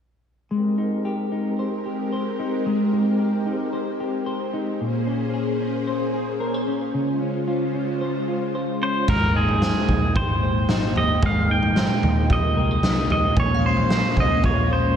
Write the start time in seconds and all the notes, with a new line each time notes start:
0.51 G#3 C4 G4 A#4
0.78 D#4
1.05 G4
1.32 D#4
1.59 C5
1.86 G4
2.13 C5
2.39 D#4
2.66 G#3
2.93 D#4
3.20 G4
3.46 D#4
3.73 C5
4.00 G4
4.26 C5
4.53 D#4
4.79 A#2 A#3 C#4 G#4 C5
5.07 C#4
5.34 G#4
5.61 C#4
5.87 C5
6.14 G#4
6.40 A#4
6.54 C5
6.67 C#4
6.94 C#3 G#3 F4 C5
7.21 C#4
7.48 F4
7.75 C#4
8.01 C5
8.28 F4
8.55 C5
8.82 C#4 C5
9.08 G#1 A#2 G#3 A#3 A#4 G5, kick, floor tom, crash
9.36 D#4 G#4
9.49 floor tom
9.62 C5, snare
9.89 A#1 D#4, kick, floor tom
10.15 G#1 G4 C5, kick, floor tom
10.43 C5
10.69 D#4, snare
10.96 G4 D#5, floor tom
11.23 G#1 G#3 F5, kick, floor tom
11.50 D#4 G5
11.63 floor tom
11.76 C5, snare
12.03 D#2 D#4, floor tom
12.30 G4 D#5, kick, floor tom
12.57 C2 A#4
12.71 C5
12.83 D#4, snare
13.10 G4 D#5, floor tom
13.37 A#1 A#2 A#3 C#4 C#5, kick, floor tom
13.54 F5
13.64 C#4 C5
13.77 floor tom
13.90 C5, snare
14.17 C2 C#4 D#5, kick, floor tom
14.44 A#1 F4 C#5, kick, floor tom
14.71 C5